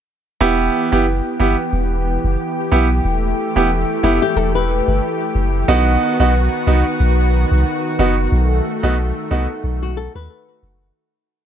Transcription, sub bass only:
0.41 E1
0.92 F#1
1.40 G1
1.73 E1
2.24 F#1
2.72 B1
3.05 E1
3.56 E1
4.04 F#1
4.36 E1
4.88 G1
5.35 F#1
5.68 B1
6.20 B1
6.67 C2
7.00 B1
7.52 C2
7.99 F#1
8.32 B1
8.83 B1
9.31 C2
9.64 B1
10.15 D#2
10.63 F#1

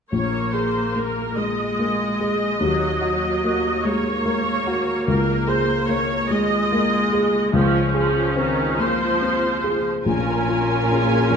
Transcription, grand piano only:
0.12 A#1
0.54 G#4
0.95 A#3
1.36 G#3
1.79 A#3
2.20 G#4
2.60 D#2
3.01 F#4
3.44 A#3
3.85 G#3
4.25 A#3
4.67 F#4
5.08 C#2
5.48 G#4
5.89 A#3
6.30 G#3
6.72 A#3
7.13 G#4
7.53 C#2
7.94 G#4
8.36 C4
8.79 A#3
9.22 C4
9.64 G#4
10.06 A#1
10.48 F4
10.91 C#4
11.31 F2

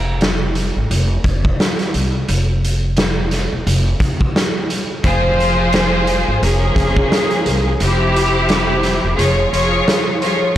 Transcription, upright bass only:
Already playing: F1
0.77 G#1
0.91 F1
1.25 F1
1.94 C2
2.29 F1
3.52 E1
3.67 F1
4.00 F1
5.04 F1
6.28 G#1
6.43 F1
6.76 F1
7.46 C2
7.81 F1
9.04 E1
9.18 F1
9.53 F1

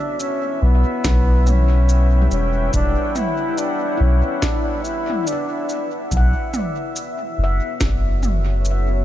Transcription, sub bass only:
0.62 B1
1.04 B1
2.31 E1
2.73 E1
4.00 B1
6.11 B1
7.38 F#1
7.81 F#1

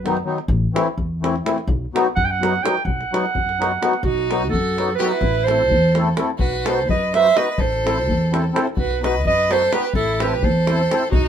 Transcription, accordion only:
0.04 D#3 F#3 B3 D#4
0.24 D#3 F#3 B3 D#4
0.73 E3 A3 C4 E4
1.21 E3 A3 C4 E4
1.45 E3 A3 C4 E4
1.93 F#3 B3 D#4 F#4
2.41 F#3 B3 D#4 F#4
2.63 F#3 B3 D#4 F#4
3.12 F#3 B3 D#4 F#4
3.59 F#3 B3 D#4 F#4
3.81 F#3 B3 D#4 F#4
4.30 F#3 B3 D#4 F#4
4.77 F#3 B3 D#4 F#4
4.99 F#3 B3 D#4 F#4
5.49 A3 C4 E4 A4
5.96 A3 C4 E4 A4
6.17 A3 C4 E4 A4
6.66 B3 D#4 F#4 B4
7.14 B3 D#4 F#4 B4
7.36 B3 D#4 F#4 B4
7.84 C4 E4 A4 C5
8.31 C4 E4 A4 C5
8.53 C4 E4 A4 C5
9.01 B3 D#4 F#4 B4
9.49 B3 D#4 F#4 B4
9.72 B3 D#4 F#4 B4
10.20 C4 E4 A4 C5
10.69 C4 E4 A4 C5
10.90 C4 E4 A4 C5

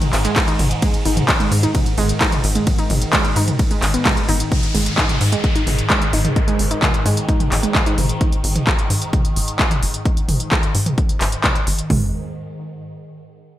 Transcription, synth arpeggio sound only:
0.25 G#3
0.48 D#4
0.82 G#3
1.05 D#4
1.40 G#3
1.63 D#4
1.98 G#3
2.21 D#4
2.55 G#3
2.79 D#4
3.13 G#3
3.36 D#4
3.71 G#3
3.94 B3
4.06 G#3
4.29 D#4
4.75 G#3
4.98 D#4
5.32 G#3
5.56 D#4
5.90 G#3
6.13 D#4
6.48 G#3
6.71 D#4
7.06 G#3
7.29 D#4
7.63 G#3
7.86 D#4
11.90 G#3

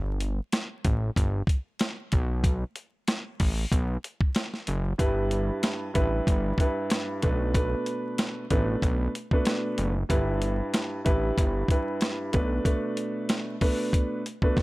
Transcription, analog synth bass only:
Already playing: G1
0.85 A1
1.17 G1
2.13 B1
3.40 A1
3.72 B1
4.68 F#1
4.99 G1
5.96 A1
6.27 G1
7.24 B1
8.51 A1
8.83 B1
9.78 F#1
10.10 G1
11.06 A1
11.38 G1
12.34 B1

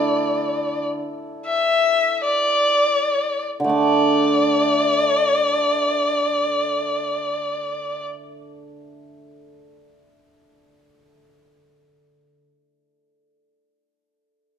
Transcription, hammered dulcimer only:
Already playing: D3 A3 D4 E4 A4
3.60 D3
3.64 A3
3.69 D4

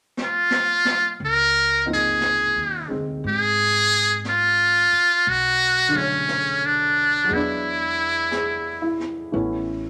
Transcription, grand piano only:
1.86 F3 A#3 C4 D#4
2.88 G#3 C4
5.89 D3 F#3
5.96 A3 C#5
7.24 F#3 G#3
7.33 B3 D4
8.31 G#4
8.82 E4
9.32 E3 A3 B3 C#4

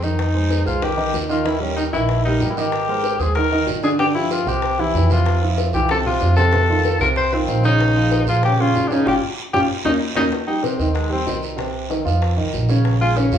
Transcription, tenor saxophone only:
0.03 D#4
0.66 F4
0.83 G4
1.30 F4
1.46 E4
1.61 C#4
1.76 D#4
1.93 E4
2.25 D#4
2.50 E4
2.57 G4
3.19 G#4
3.35 A#4
3.84 G#4
3.99 G4
4.15 E4
4.32 F4
4.48 G4
4.80 E4
5.12 F4
5.74 G4
5.91 A4
6.06 F4
6.37 A4
7.01 A#4
7.17 C5
7.34 C4
7.65 D#4
8.29 F4
8.45 G4
8.61 F4
8.88 D4
8.93 D#4
9.08 G4
9.53 G4
9.85 D#4
10.16 D#4
10.47 D#4
10.63 C4
10.95 G#3
11.12 C4
13.01 F4
13.17 C#4

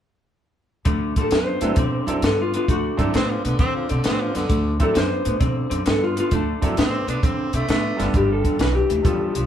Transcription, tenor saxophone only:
3.16 C4
3.31 F3
3.45 D3
3.60 C4
3.75 F3
3.91 D3
4.06 C4
4.21 F3
4.36 D3
6.79 C4
7.10 D4
7.25 C4
7.55 A3
7.70 A3

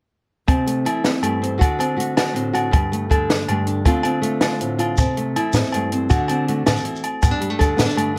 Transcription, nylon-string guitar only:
0.47 C3 C4
0.66 A3
0.85 E3 E4
1.04 C4
1.22 G2 A3
1.42 C4
1.58 D3 F#4
1.79 C4
1.96 A3 F#4
2.17 F#4
2.33 A2 C4
2.53 F#4
2.71 G2, muted nylon-string guitar stroke
2.92 A3
3.10 D3 A4
3.29 D4
3.48 G2 A3
3.67 D4
3.85 D3 A3 C4 F4
4.04 C4
4.21 A3 F4
4.42 F4
4.60 A2 C4
4.79 F4
4.98 C3 C4
5.17 A3
5.36 E3 E4
5.54 C4
5.73 G2 A3
5.92 C4
6.10 D3 F#4
6.29 C4
6.49 A3 F#4
6.66 D3
6.84 E3
7.23 G2 B3
7.31 D4
7.40 G3
7.50 A3
7.58 D3 A4
7.77 B3
7.86 D4
7.95 G2 A3

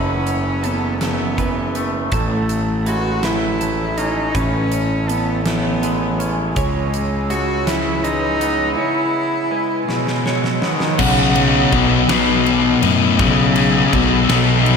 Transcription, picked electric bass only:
Already playing: F#1
2.12 A1
4.35 A1
6.56 C#2
10.99 B1
11.72 B1
12.09 B1
12.83 F#2
13.19 B1
13.93 B1
14.29 B1

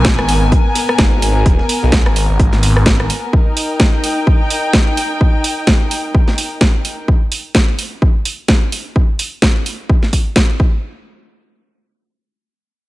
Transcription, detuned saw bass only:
Already playing: B1
0.19 G#1
0.99 G#1
1.46 D#1
1.83 B1
2.06 G#1
2.30 G#1
2.40 G#1
2.86 G#1

